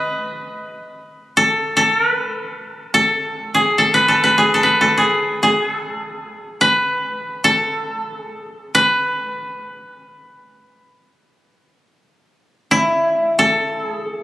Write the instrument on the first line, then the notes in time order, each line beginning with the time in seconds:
koto
Already playing: B4 D#5
1.37 A4
1.77 A4
1.97 A#4
2.10 B4
2.94 A4
3.54 G#4
3.78 A4
3.94 B4
4.08 A4
4.24 B4
4.38 G#4
4.54 A4
4.63 B4
4.81 A4
4.98 G#4
5.43 G#4
5.70 A4
6.61 B4
7.44 A4
8.17 G#4
8.75 B4
12.71 E4
13.39 A4
13.85 G#4